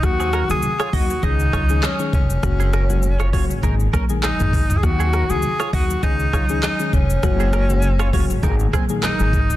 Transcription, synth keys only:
X:1
M:4/4
L:1/16
Q:"Swing 16ths" 1/4=100
K:Ebm
V:1 name="Synth keys"
[E,G,B,G]3 [E,G,B,G] z2 [E,G,B,G] z [E,A,DA] z2 [E,A,DA] z [E,A,DA] z2 | [D,A,B,G]3 [D,A,B,G] z2 [D,A,B,G] z [E,A,B,A] z2 [E,A,B,A] z [E,A,B,A] z2 | [E,G,B,G]3 [E,G,B,G] z2 [E,G,B,G] z [E,A,DA] z2 [E,A,DA] z [E,A,DA] z2 | [D,A,B,G]3 [D,A,B,G] z2 [D,A,B,G] z [E,A,B,A] z2 [E,A,B,A] z [E,A,B,A] z2 |]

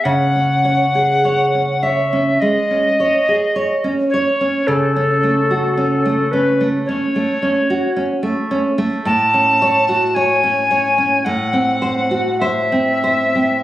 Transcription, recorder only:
X:1
M:4/4
L:1/8
Q:1/4=54
K:C#m
V:1 name="Recorder"
f3 e d3 c | A3 B c2 z2 | [K:F#dor] a2 g2 f2 e2 |]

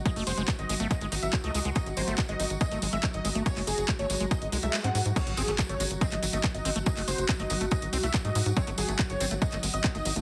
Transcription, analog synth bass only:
X:1
M:4/4
L:1/16
Q:1/4=141
K:none
V:1 name="Analog synth bass" clef=bass
z ^F,,, F,,, F,,, z ^G,,, G,,, G,,, z G,,, G,,, G,,, z ^C,, C,, C,, | z ^G,,, G,,, G,,, z G,,, G,,, G,,, z G,,, G,,, G,,, z G,,, G,,, G,,, | z ^F,,, F,,, F,,, z ^G,,, G,,, G,,, z G,,, ^B,,, B,,, z ^G,, G,, G,, | z ^G,,, G,,, G,,, z G,,, G,,, G,,, z G,,, G,,, G,,, z G,,, G,,, G,,, |
z ^F,,, F,,, F,,, z ^G,,, G,,, G,,, z G,,, ^B,,, B,,, z ^G,, G,, G,, | z ^G,,, G,,, G,,, z G,,, G,,, G,,, z G,,, G,,, G,,, z G,,, G,,, G,,, |]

